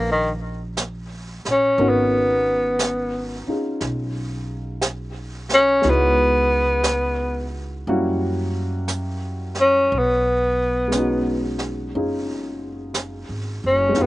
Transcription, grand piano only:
0, 0, Header, 1, 2, 480
1, 0, Start_track
1, 0, Tempo, 1013514
1, 853, Time_signature, 4, 2, 24, 8
1, 6659, End_track
2, 0, Start_track
2, 0, Title_t, "Grand piano"
2, 0, Program_c, 0, 0
2, 0, Control_c, 0, 64, 127
2, 0, Note_on_c, 0, 58, 53
2, 0, Note_on_c, 0, 59, 49
2, 0, Note_on_c, 0, 61, 54
2, 0, Note_on_c, 0, 63, 45
2, 0, Note_on_c, 0, 67, 60
2, 843, Note_off_c, 0, 59, 0
2, 847, Note_off_c, 0, 58, 0
2, 847, Note_off_c, 0, 63, 0
2, 848, Note_on_c, 0, 70, 61
2, 849, Note_off_c, 0, 61, 0
2, 850, Note_on_c, 0, 59, 53
2, 854, Note_on_c, 0, 63, 54
2, 857, Note_on_c, 0, 61, 61
2, 857, Note_on_c, 0, 66, 68
2, 859, Note_off_c, 0, 67, 0
2, 860, Control_c, 0, 64, 0
2, 939, Control_c, 0, 64, 127
2, 1638, Note_off_c, 0, 61, 0
2, 1642, Note_off_c, 0, 63, 0
2, 1645, Note_on_c, 0, 61, 42
2, 1649, Note_on_c, 0, 63, 39
2, 1651, Note_on_c, 0, 65, 38
2, 1657, Note_on_c, 0, 68, 43
2, 2750, Note_off_c, 0, 59, 0
2, 2755, Note_on_c, 0, 56, 56
2, 2756, Note_off_c, 0, 63, 0
2, 2757, Note_on_c, 0, 59, 49
2, 2763, Note_on_c, 0, 63, 45
2, 2765, Note_off_c, 0, 61, 0
2, 2767, Note_off_c, 0, 70, 0
2, 2768, Note_off_c, 0, 65, 0
2, 2768, Note_on_c, 0, 64, 48
2, 2771, Note_off_c, 0, 66, 0
2, 2771, Note_off_c, 0, 68, 0
2, 2774, Control_c, 0, 64, 0
2, 2778, Note_on_c, 0, 66, 63
2, 2857, Control_c, 0, 64, 127
2, 3723, Note_off_c, 0, 56, 0
2, 3724, Note_off_c, 0, 59, 0
2, 3727, Note_off_c, 0, 63, 0
2, 3730, Note_off_c, 0, 64, 0
2, 3731, Note_off_c, 0, 66, 0
2, 3731, Note_on_c, 0, 58, 56
2, 3732, Note_on_c, 0, 55, 59
2, 3737, Control_c, 0, 64, 0
2, 3738, Note_on_c, 0, 61, 53
2, 3738, Note_on_c, 0, 66, 71
2, 3740, Note_on_c, 0, 64, 57
2, 3806, Control_c, 0, 64, 127
2, 4694, Note_off_c, 0, 58, 0
2, 4695, Note_off_c, 0, 55, 0
2, 4698, Note_off_c, 0, 61, 0
2, 4698, Note_off_c, 0, 66, 0
2, 4699, Note_off_c, 0, 64, 0
2, 4700, Control_c, 0, 64, 0
2, 4793, Control_c, 0, 64, 127
2, 5153, Note_on_c, 0, 56, 49
2, 5166, Note_on_c, 0, 59, 45
2, 5181, Note_on_c, 0, 61, 45
2, 5196, Note_on_c, 0, 63, 48
2, 5206, Note_on_c, 0, 66, 54
2, 5652, Note_off_c, 0, 61, 0
2, 5653, Note_off_c, 0, 63, 0
2, 5660, Note_on_c, 0, 61, 46
2, 5661, Note_on_c, 0, 63, 42
2, 5667, Note_on_c, 0, 65, 40
2, 5669, Note_on_c, 0, 68, 51
2, 6572, Note_off_c, 0, 56, 0
2, 6579, Note_on_c, 0, 56, 62
2, 6587, Note_off_c, 0, 59, 0
2, 6594, Note_on_c, 0, 59, 54
2, 6604, Note_off_c, 0, 63, 0
2, 6611, Note_on_c, 0, 63, 61
2, 6612, Note_off_c, 0, 65, 0
2, 6615, Note_off_c, 0, 61, 0
2, 6618, Control_c, 0, 64, 0
2, 6619, Note_off_c, 0, 68, 0
2, 6619, Note_on_c, 0, 65, 56
2, 6628, Note_off_c, 0, 66, 0
2, 6632, Note_on_c, 0, 67, 65
2, 6659, Note_off_c, 0, 56, 0
2, 6659, Note_off_c, 0, 59, 0
2, 6659, Note_off_c, 0, 63, 0
2, 6659, Note_off_c, 0, 65, 0
2, 6659, Note_off_c, 0, 67, 0
2, 6659, End_track
0, 0, End_of_file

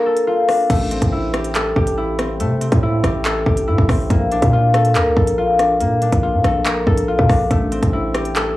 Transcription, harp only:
0, 0, Header, 1, 2, 480
1, 0, Start_track
1, 0, Tempo, 425532
1, 787, Time_signature, 4, 2, 24, 8
1, 9666, End_track
2, 0, Start_track
2, 0, Title_t, "Harp"
2, 0, Program_c, 0, 46
2, 0, Note_on_c, 0, 58, 86
2, 0, Note_on_c, 0, 62, 73
2, 0, Note_on_c, 0, 65, 95
2, 0, Note_on_c, 0, 70, 97
2, 68, Note_on_c, 0, 69, 86
2, 135, Note_off_c, 0, 58, 0
2, 301, Note_off_c, 0, 65, 0
2, 306, Note_on_c, 0, 65, 95
2, 544, Note_off_c, 0, 62, 0
2, 549, Note_on_c, 0, 62, 87
2, 790, Note_on_c, 0, 57, 91
2, 858, Note_off_c, 0, 70, 0
2, 1026, Note_on_c, 0, 60, 78
2, 1265, Note_on_c, 0, 64, 86
2, 1333, Note_off_c, 0, 65, 0
2, 1505, Note_on_c, 0, 67, 86
2, 1745, Note_off_c, 0, 69, 0
2, 1749, Note_on_c, 0, 69, 112
2, 1985, Note_off_c, 0, 67, 0
2, 1989, Note_on_c, 0, 67, 91
2, 2223, Note_off_c, 0, 64, 0
2, 2227, Note_on_c, 0, 64, 92
2, 2461, Note_off_c, 0, 60, 0
2, 2466, Note_on_c, 0, 60, 82
2, 2702, Note_off_c, 0, 57, 0
2, 2707, Note_on_c, 0, 57, 98
2, 2939, Note_off_c, 0, 60, 0
2, 2943, Note_on_c, 0, 60, 82
2, 3185, Note_off_c, 0, 64, 0
2, 3189, Note_on_c, 0, 64, 95
2, 3422, Note_off_c, 0, 67, 0
2, 3427, Note_on_c, 0, 67, 85
2, 3663, Note_off_c, 0, 69, 0
2, 3667, Note_on_c, 0, 69, 106
2, 3706, Note_off_c, 0, 62, 0
2, 3902, Note_off_c, 0, 67, 0
2, 3907, Note_on_c, 0, 67, 80
2, 4142, Note_off_c, 0, 64, 0
2, 4147, Note_on_c, 0, 64, 93
2, 4384, Note_off_c, 0, 60, 0
2, 4389, Note_on_c, 0, 60, 81
2, 4630, Note_on_c, 0, 58, 91
2, 4697, Note_off_c, 0, 57, 0
2, 4697, Note_off_c, 0, 69, 0
2, 4870, Note_on_c, 0, 62, 81
2, 5109, Note_on_c, 0, 65, 94
2, 5177, Note_off_c, 0, 64, 0
2, 5349, Note_on_c, 0, 69, 88
2, 5588, Note_on_c, 0, 70, 94
2, 5823, Note_off_c, 0, 69, 0
2, 5828, Note_on_c, 0, 69, 85
2, 5896, Note_off_c, 0, 58, 0
2, 6062, Note_off_c, 0, 65, 0
2, 6067, Note_on_c, 0, 65, 96
2, 6305, Note_off_c, 0, 62, 0
2, 6309, Note_on_c, 0, 62, 80
2, 6546, Note_on_c, 0, 58, 90
2, 6562, Note_off_c, 0, 67, 0
2, 6786, Note_off_c, 0, 62, 0
2, 6791, Note_on_c, 0, 62, 74
2, 7022, Note_off_c, 0, 65, 0
2, 7026, Note_on_c, 0, 65, 97
2, 7260, Note_off_c, 0, 69, 0
2, 7265, Note_on_c, 0, 69, 81
2, 7333, Note_off_c, 0, 70, 0
2, 7508, Note_on_c, 0, 70, 98
2, 7743, Note_off_c, 0, 69, 0
2, 7747, Note_on_c, 0, 69, 87
2, 7773, Note_off_c, 0, 60, 0
2, 7815, Note_off_c, 0, 58, 0
2, 7981, Note_off_c, 0, 65, 0
2, 7986, Note_on_c, 0, 65, 99
2, 8224, Note_off_c, 0, 62, 0
2, 8229, Note_on_c, 0, 62, 85
2, 8469, Note_on_c, 0, 57, 93
2, 8537, Note_off_c, 0, 70, 0
2, 8705, Note_on_c, 0, 60, 77
2, 8945, Note_on_c, 0, 64, 87
2, 9012, Note_off_c, 0, 65, 0
2, 9185, Note_on_c, 0, 67, 90
2, 9425, Note_off_c, 0, 69, 0
2, 9430, Note_on_c, 0, 69, 112
2, 9665, Note_off_c, 0, 67, 0
2, 9666, Note_off_c, 0, 57, 0
2, 9666, Note_off_c, 0, 60, 0
2, 9666, Note_off_c, 0, 62, 0
2, 9666, Note_off_c, 0, 64, 0
2, 9666, Note_off_c, 0, 69, 0
2, 9666, End_track
0, 0, End_of_file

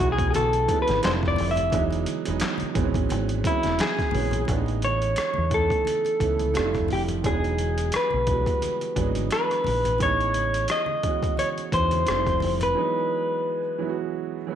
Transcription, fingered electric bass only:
0, 0, Header, 1, 3, 480
1, 0, Start_track
1, 0, Key_signature, 4, "major"
1, 0, Tempo, 689655
1, 1201, Time_signature, 4, 2, 24, 8
1, 10127, End_track
2, 0, Start_track
2, 0, Title_t, "Fingered electric bass"
2, 0, Program_c, 0, 33
2, 3, Note_on_c, 0, 35, 78
2, 219, Note_off_c, 0, 35, 0
2, 250, Note_on_c, 0, 35, 93
2, 463, Note_off_c, 0, 35, 0
2, 624, Note_on_c, 0, 32, 80
2, 716, Note_off_c, 0, 32, 0
2, 728, Note_on_c, 0, 29, 96
2, 942, Note_off_c, 0, 29, 0
2, 971, Note_on_c, 0, 29, 86
2, 1183, Note_off_c, 0, 29, 0
2, 1206, Note_on_c, 0, 28, 104
2, 1420, Note_off_c, 0, 28, 0
2, 1585, Note_on_c, 0, 28, 78
2, 1676, Note_off_c, 0, 28, 0
2, 1924, Note_on_c, 0, 32, 76
2, 2139, Note_off_c, 0, 32, 0
2, 2168, Note_on_c, 0, 32, 105
2, 2381, Note_off_c, 0, 32, 0
2, 2543, Note_on_c, 0, 28, 82
2, 2635, Note_off_c, 0, 28, 0
2, 2887, Note_on_c, 0, 34, 86
2, 3101, Note_off_c, 0, 34, 0
2, 3125, Note_on_c, 0, 33, 93
2, 3575, Note_off_c, 0, 33, 0
2, 3744, Note_on_c, 0, 40, 75
2, 3957, Note_off_c, 0, 40, 0
2, 4324, Note_on_c, 0, 37, 78
2, 4572, Note_on_c, 0, 29, 85
2, 4582, Note_off_c, 0, 37, 0
2, 4784, Note_off_c, 0, 29, 0
2, 4815, Note_on_c, 0, 29, 75
2, 5025, Note_off_c, 0, 29, 0
2, 5047, Note_on_c, 0, 28, 99
2, 5496, Note_off_c, 0, 28, 0
2, 5665, Note_on_c, 0, 35, 84
2, 5877, Note_off_c, 0, 35, 0
2, 6244, Note_on_c, 0, 32, 81
2, 6459, Note_off_c, 0, 32, 0
2, 6734, Note_on_c, 0, 34, 77
2, 6969, Note_off_c, 0, 34, 0
2, 6969, Note_on_c, 0, 33, 90
2, 7417, Note_off_c, 0, 33, 0
2, 8167, Note_on_c, 0, 40, 75
2, 8381, Note_off_c, 0, 40, 0
2, 8415, Note_on_c, 0, 29, 90
2, 8625, Note_off_c, 0, 29, 0
2, 8653, Note_on_c, 0, 29, 76
2, 8864, Note_off_c, 0, 29, 0
2, 10127, End_track
3, 0, Start_track
3, 0, Title_t, "Muted fingered electric bass strokes"
3, 1826, Note_on_c, 9, 29, 48
3, 1895, Note_off_c, 9, 29, 0
3, 3609, Note_on_c, 9, 29, 46
3, 3678, Note_off_c, 9, 29, 0
3, 5536, Note_on_c, 9, 29, 47
3, 5606, Note_off_c, 9, 29, 0
3, 10127, End_track
0, 0, End_of_file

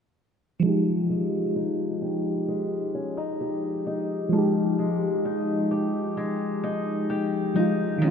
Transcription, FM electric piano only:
0, 0, Header, 1, 2, 480
1, 0, Start_track
1, 0, Key_signature, -4, "minor"
1, 0, Tempo, 923077
1, 330, Time_signature, 4, 2, 24, 8
1, 4215, End_track
2, 0, Start_track
2, 0, Title_t, "FM electric piano"
2, 0, Program_c, 0, 5
2, 310, Note_on_c, 0, 53, 68
2, 326, Note_on_c, 0, 56, 63
2, 342, Note_on_c, 0, 63, 63
2, 357, Note_on_c, 0, 67, 72
2, 444, Control_c, 0, 64, 127
2, 2219, Note_off_c, 0, 53, 0
2, 2227, Note_off_c, 0, 56, 0
2, 2232, Note_on_c, 0, 53, 69
2, 2235, Note_off_c, 0, 63, 0
2, 2243, Note_off_c, 0, 67, 0
2, 2247, Note_on_c, 0, 56, 64
2, 2263, Note_on_c, 0, 63, 60
2, 2279, Note_on_c, 0, 67, 75
2, 3900, Note_off_c, 0, 53, 0
2, 3908, Note_off_c, 0, 56, 0
2, 3916, Note_off_c, 0, 63, 0
2, 3922, Note_on_c, 0, 53, 50
2, 3924, Note_off_c, 0, 67, 0
2, 3930, Note_on_c, 0, 56, 49
2, 3938, Note_on_c, 0, 63, 46
2, 3946, Note_on_c, 0, 65, 59
2, 4151, Note_on_c, 0, 51, 69
2, 4160, Note_off_c, 0, 53, 0
2, 4166, Note_on_c, 0, 53, 52
2, 4170, Note_off_c, 0, 56, 0
2, 4174, Note_off_c, 0, 63, 0
2, 4176, Control_c, 0, 64, 0
2, 4178, Note_off_c, 0, 65, 0
2, 4183, Note_on_c, 0, 61, 61
2, 4202, Note_off_c, 0, 53, 0
2, 4215, Note_off_c, 0, 51, 0
2, 4215, Note_off_c, 0, 61, 0
2, 4215, End_track
0, 0, End_of_file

